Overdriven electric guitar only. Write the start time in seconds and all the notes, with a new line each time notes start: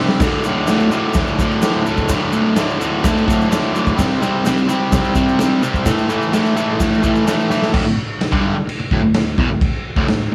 0.00 C3 G3 C4
0.21 D2 A2 D3
0.46 D2 A2 D3
0.68 D2 A2 D3
0.91 D2 A2 D3
1.16 D2 A2 D3
1.40 D2 A2 D3
1.63 D2 A2 D3
1.86 D2 A2 D3
2.10 D2 A2 D3
2.33 D2 A2 D3
2.57 D2 A2 D3
2.79 D2 A2 D3
3.04 D2 A2 D3
3.26 D2 A2 D3
3.49 D2 A2 D3
3.73 D2 A2 D3
3.96 C3 G3 C4
4.21 C3 G3 C4
4.45 C3 G3 C4
4.69 C3 G3 C4
4.93 C3 G3 C4
5.15 C3 G3 C4
5.39 C3 G3 C4
5.62 C3 G3 C4
5.86 A2 E3 A3
6.08 A2 E3 A3
6.32 A2 E3 A3
6.56 A2 E3 A3
6.80 A2 E3 A3
7.03 A2 E3 A3
7.26 A2 E3 A3
7.50 A2 E3 A3
7.73 D2 A2
7.86 D2 A2
7.97 muted overdriven electric guitar stroke
8.21 muted overdriven electric guitar stroke
8.32 G2 D3 G3
8.57 muted overdriven electric guitar stroke
8.67 muted overdriven electric guitar stroke
8.80 muted overdriven electric guitar stroke
8.92 D2 A2
9.03 D2 A2
9.15 D2 A2
9.38 E2 B2
9.50 D2 A2
9.96 D2 A2
10.08 D2 A2